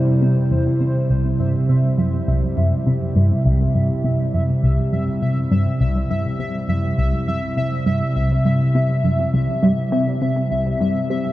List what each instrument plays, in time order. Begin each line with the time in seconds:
Already playing: synth arpeggio sound C3, analog synth pad C3 G3 E4 C5, synth texture C5
0.22 synth arpeggio sound C3
0.51 synth arpeggio sound E2
0.81 synth arpeggio sound C3
1.10 synth arpeggio sound C2, synth texture E5
1.40 synth arpeggio sound G2
1.69 synth arpeggio sound C3
1.98 synth arpeggio sound F#2
2.28 synth arpeggio sound C2
2.57 synth arpeggio sound F#2
2.87 synth arpeggio sound C3
3.16 synth arpeggio sound G2
3.45 synth arpeggio sound C2
3.75 synth arpeggio sound G2
4.04 synth arpeggio sound C3
4.34 synth arpeggio sound F#2
4.63 synth arpeggio sound C2
4.92 synth arpeggio sound F#2
5.22 synth arpeggio sound C3
5.51 synth arpeggio sound G2
5.81 synth arpeggio sound C2
6.10 synth arpeggio sound G2
6.39 synth arpeggio sound C3
6.69 synth arpeggio sound F#2
6.98 synth arpeggio sound C2
7.27 synth arpeggio sound F#2
7.57 synth arpeggio sound C3
7.86 synth arpeggio sound G2
8.16 synth arpeggio sound C2
8.45 synth arpeggio sound G2
8.75 synth arpeggio sound C3
9.04 synth arpeggio sound F#2
9.34 synth arpeggio sound C2
9.63 synth arpeggio sound G2
9.92 synth arpeggio sound C3
10.22 synth arpeggio sound C3
10.51 synth arpeggio sound C2
10.81 synth arpeggio sound G2
11.10 synth arpeggio sound C3